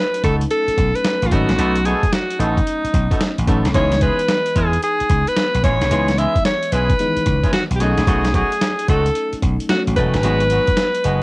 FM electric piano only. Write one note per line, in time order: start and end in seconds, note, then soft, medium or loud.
0.00 1.27 F#3 medium
0.00 1.28 A3 medium
0.00 1.28 C#4 medium
0.00 1.28 D#4 medium
1.31 3.43 F#3 medium
1.31 3.44 A3 medium
1.31 3.44 C#4 medium
1.31 3.45 D#4 medium
3.48 3.75 F#3 medium
3.48 3.75 A3 soft
3.48 3.75 C#4 medium
3.48 3.75 D#4 medium
3.74 5.87 E3 medium
3.74 5.87 G#3 medium
3.74 5.87 B3 medium
3.74 5.88 D#4 medium
5.91 6.97 E3 medium
5.91 6.97 G#3 medium
5.91 6.97 B3 medium
5.91 6.98 D#4 medium
6.99 7.07 D#3 soft
6.99 7.80 G#3 soft
6.99 7.81 B3 soft
6.99 7.81 D#4 medium
7.06 7.84 E3 medium
7.80 9.65 F#3 medium
7.80 9.66 A3 medium
7.80 9.66 C#4 medium
7.80 9.67 D#4 medium
9.70 10.22 F#3 soft
9.70 10.24 A3 soft
9.70 10.24 C#4 soft
9.70 10.24 F#4 medium
10.23 11.23 F#3 medium
10.23 11.23 G#3 medium
10.23 11.23 B3 medium
10.23 11.23 D#4 medium